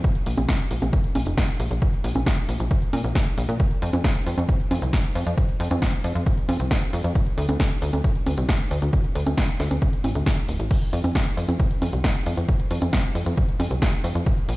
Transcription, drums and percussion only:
0.04 kick, closed hi-hat, shaker
0.15 closed hi-hat, shaker
0.26 open hi-hat
0.37 closed hi-hat, high conga, shaker
0.49 kick, snare, closed hi-hat, shaker
0.60 closed hi-hat, shaker
0.71 open hi-hat
0.82 closed hi-hat, high conga, shaker
0.93 kick, closed hi-hat, shaker
1.04 closed hi-hat, shaker
1.15 open hi-hat, high conga
1.26 closed hi-hat, shaker
1.38 kick, snare, closed hi-hat, shaker
1.49 closed hi-hat, shaker
1.60 open hi-hat
1.71 closed hi-hat, shaker
1.82 kick, closed hi-hat, shaker
1.93 closed hi-hat, shaker
2.04 open hi-hat
2.15 closed hi-hat, high conga, shaker
2.26 kick, snare, closed hi-hat, shaker
2.38 closed hi-hat, shaker
2.49 open hi-hat
2.60 closed hi-hat, shaker
2.71 kick, closed hi-hat, shaker
2.82 closed hi-hat, shaker
2.93 open hi-hat, high conga
3.04 closed hi-hat, shaker
3.15 kick, snare, closed hi-hat, shaker
3.27 closed hi-hat, shaker
3.38 open hi-hat
3.49 closed hi-hat, shaker
3.60 kick, closed hi-hat, shaker
3.71 closed hi-hat, shaker
3.82 open hi-hat
3.93 closed hi-hat, high conga, shaker
4.04 kick, snare, closed hi-hat, shaker
4.15 closed hi-hat, shaker
4.27 open hi-hat
4.38 closed hi-hat, high conga, shaker
4.49 kick, closed hi-hat, shaker
4.60 closed hi-hat, shaker
4.71 open hi-hat, high conga
4.82 closed hi-hat, shaker
4.93 kick, snare, closed hi-hat, shaker
5.04 closed hi-hat, shaker
5.15 open hi-hat
5.27 closed hi-hat, shaker
5.38 kick, closed hi-hat, shaker
5.49 closed hi-hat, shaker
5.60 open hi-hat
5.71 closed hi-hat, high conga, shaker
5.82 kick, snare, closed hi-hat, shaker
5.93 closed hi-hat, shaker
6.04 open hi-hat
6.15 closed hi-hat, shaker
6.26 kick, closed hi-hat, shaker
6.38 closed hi-hat, shaker
6.49 open hi-hat, high conga
6.60 closed hi-hat, shaker
6.71 kick, snare, closed hi-hat, shaker
6.82 closed hi-hat, shaker
6.93 open hi-hat
7.04 closed hi-hat, shaker
7.15 kick, closed hi-hat, shaker
7.26 closed hi-hat, shaker
7.38 open hi-hat
7.49 closed hi-hat, high conga, shaker
7.60 kick, snare, closed hi-hat, shaker
7.71 closed hi-hat, shaker
7.82 open hi-hat
7.93 closed hi-hat, high conga, shaker
8.04 kick, closed hi-hat, shaker
8.15 closed hi-hat, shaker
8.26 open hi-hat, high conga
8.38 closed hi-hat, shaker
8.49 kick, snare, closed hi-hat, shaker
8.60 closed hi-hat, shaker
8.71 open hi-hat
8.82 closed hi-hat, shaker
8.93 kick, closed hi-hat, shaker
9.04 closed hi-hat, shaker
9.15 open hi-hat
9.27 closed hi-hat, high conga, shaker
9.38 kick, snare, closed hi-hat, shaker
9.49 closed hi-hat, shaker
9.60 snare, open hi-hat
9.71 closed hi-hat, high conga, shaker
9.82 kick, closed hi-hat, shaker
9.93 closed hi-hat, shaker
10.04 open hi-hat, high conga
10.15 closed hi-hat, shaker
10.26 kick, snare, closed hi-hat, shaker
10.38 closed hi-hat, shaker
10.49 open hi-hat
10.60 closed hi-hat, shaker
10.71 kick, closed hi-hat, crash, shaker
10.82 closed hi-hat, shaker
10.93 open hi-hat
11.04 closed hi-hat, high conga, shaker
11.15 kick, snare, closed hi-hat, shaker
11.26 closed hi-hat, shaker
11.37 open hi-hat
11.49 closed hi-hat, high conga, shaker
11.60 kick, closed hi-hat, shaker
11.71 closed hi-hat, shaker
11.82 open hi-hat, high conga
11.93 closed hi-hat, shaker
12.04 kick, snare, closed hi-hat, shaker
12.15 closed hi-hat, shaker
12.26 open hi-hat
12.37 closed hi-hat, shaker
12.49 kick, closed hi-hat, shaker
12.60 closed hi-hat, shaker
12.71 open hi-hat
12.82 closed hi-hat, high conga, shaker
12.93 kick, snare, closed hi-hat, shaker
13.04 closed hi-hat, shaker
13.15 open hi-hat
13.26 closed hi-hat, shaker
13.38 kick, closed hi-hat, shaker
13.49 closed hi-hat, shaker
13.60 open hi-hat, high conga
13.71 closed hi-hat, shaker
13.82 kick, snare, closed hi-hat, shaker
13.93 closed hi-hat, shaker
14.04 open hi-hat
14.15 closed hi-hat, shaker
14.26 kick, closed hi-hat, shaker
14.38 closed hi-hat, shaker
14.49 open hi-hat

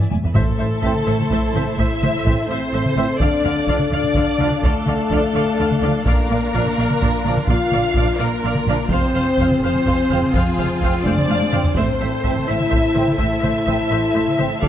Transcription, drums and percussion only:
0.11 taiko high
0.24 taiko low
0.35 taiko
0.83 taiko
0.96 taiko mid
1.20 taiko mid
1.31 taiko
1.55 taiko mid
1.67 taiko mid
1.79 taiko
2.03 taiko mid
2.26 taiko
2.86 taiko mid
2.96 taiko mid
3.20 taiko
3.68 taiko
3.79 taiko mid
4.04 taiko mid
4.14 taiko
4.38 taiko mid
4.50 taiko mid
4.63 taiko
4.86 taiko mid
5.10 taiko
5.71 taiko mid
5.82 taiko mid
6.06 taiko
6.54 taiko
6.66 taiko mid
6.90 taiko mid
7.01 taiko
7.25 taiko mid
7.37 taiko mid
7.47 taiko
7.71 taiko mid
7.95 taiko
8.55 taiko mid
8.66 taiko mid
8.89 taiko
9.37 taiko
9.50 taiko mid
9.74 taiko mid
9.85 taiko
10.10 taiko mid
10.22 taiko mid
10.34 taiko
10.58 taiko mid
10.82 taiko
11.06 taiko high
11.17 taiko mid
11.29 taiko high
11.41 taiko high
11.53 taiko mid
11.65 taiko low
11.76 taiko
12.24 taiko
12.37 taiko mid
12.60 taiko mid
12.72 taiko
12.96 taiko mid
13.08 taiko mid
13.19 taiko
13.43 taiko mid
13.68 taiko
14.27 taiko mid
14.39 taiko mid
14.63 taiko

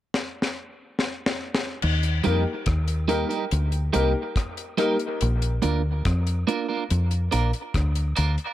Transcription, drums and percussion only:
0.14 snare
0.42 snare
0.99 snare
1.26 snare
1.54 snare
1.82 crash
2.03 closed hi-hat
2.24 closed hi-hat
2.66 kick, cross-stick, closed hi-hat
2.88 closed hi-hat
3.09 closed hi-hat
3.31 closed hi-hat
3.51 closed hi-hat
3.72 closed hi-hat
3.94 closed hi-hat
4.36 kick, cross-stick, closed hi-hat
4.57 closed hi-hat
4.78 cross-stick, closed hi-hat
4.99 closed hi-hat
5.21 closed hi-hat
5.42 closed hi-hat
5.62 closed hi-hat
6.05 kick, cross-stick, closed hi-hat
6.27 closed hi-hat
6.48 closed hi-hat
6.90 closed hi-hat
7.11 closed hi-hat
7.32 closed hi-hat
7.53 closed hi-hat
7.74 kick, cross-stick, closed hi-hat
7.95 closed hi-hat
8.16 closed hi-hat
8.38 closed hi-hat

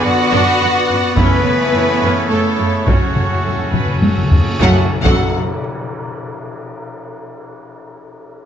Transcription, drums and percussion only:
1.16 taiko
1.45 taiko mid
2.87 taiko
3.16 taiko mid
3.74 taiko low-mid
4.02 taiko high
4.31 taiko low
4.60 taiko, tam-tam
5.05 taiko, tam-tam

